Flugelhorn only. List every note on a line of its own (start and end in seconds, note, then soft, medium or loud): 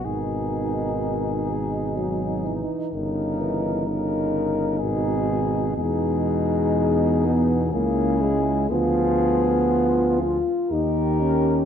0.05 2.67 G#4 soft
2.93 3.83 A#4 soft
3.86 4.78 A#4 soft
4.79 5.74 G#4 soft
5.75 7.67 G#4 soft
7.72 8.68 G#4 medium
8.70 10.39 G#4 medium
10.69 11.65 A#4 medium